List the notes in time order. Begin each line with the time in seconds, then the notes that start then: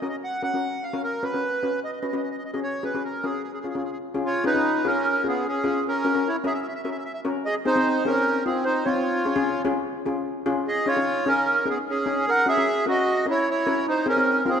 0.02 C#4 F#4 A#4 D#5
0.09 D#5
0.24 F#5
0.42 C#4 F#4 A#4 F#5
0.54 C#4 F#4 A#4
0.83 F5
0.93 C#4 F#4 A#4
1.03 A#4
1.23 C#4 F#4 B4
1.34 C#4 F#4 B4
1.63 C#4 F#4 B4
1.84 D#5
1.92 D#5
2.01 C#4 F#4 B4 D#5
2.08 D#5
2.13 C#4 F#4 B4 D#5
2.23 D#5
2.30 D#5
2.38 D#5
2.45 D#5
2.52 C#4 F#4 G#4 D#5
2.63 C#5
2.83 C#4 F#4 G#4 B4
2.94 C#4 F#4 G#4
3.04 A#4
3.24 C#4 F#4 G#4 A#4
3.44 G#4
3.53 G#4
3.60 C#4 F4 G#4
3.69 G#4
3.75 C#4 F4 G#4
3.84 G#4
3.92 G#4
4.14 C#4 F4 G#4
4.25 F4 C#5
4.44 C#4 D#4 F4 G#4 B4
4.54 C#4 F4 G#4
4.85 C#4 F4 G#4 A#4
5.24 B3 C#4 F4 G#4
5.28 G#4
5.47 C#4 G#4
5.64 C#4 F4 G#4
5.88 C#4 A#4
6.05 C#4 F#4 A#4
6.14 C#4 F#4 A#4
6.28 E4 C#5
6.44 C#4 F#4 G#4 A#4 E5
6.54 E5
6.62 E5
6.68 E5
6.75 E5
6.83 C#4 F#4 A#4 E5
6.91 E5
6.98 E5
7.05 E5
7.14 E5
7.25 C#4 F#4 A#4
7.45 G#4 D#5
7.65 C4 D#4 G#4 C5
7.76 C4 D#4 G#4
8.05 C4 C#4 D#4 G#4 A#4
8.46 C4 D#4 F4 G#4
8.64 D#4 C5
8.85 C4 D#4 F4 C#5
9.25 C#4 F4 G#4
9.36 C#4 F4 G#4
9.65 C#4 F4 G#4
10.06 C#4 F4 G#4
10.46 C#4 F4 G#4
10.68 G#4 D#5
10.86 C#4 D#4 F4 G#4 C#5
10.96 C#4 D#4 G#4
11.26 C#4 D#4 G#4 A#4
11.65 B3 C#4 D#4 G#4
11.70 G#4
11.89 C#4 G#4
12.06 C#4 D#4 G#4
12.28 A#4 F#5
12.46 C#4 F#4 G#4 A#4 E5
12.57 C#4 F#4 A#4
12.86 C#4 F#4 A#4
12.90 D#5
13.26 C#4 E4 F#4 A#4
13.31 C#5
13.50 E4 C#5
13.66 C#4 F#4 A#4
13.88 D#4 C5
14.06 C4 C#4 D#4 G#4 A#4
14.16 C4 D#4 G#4
14.46 C4 D#4 F4 G#4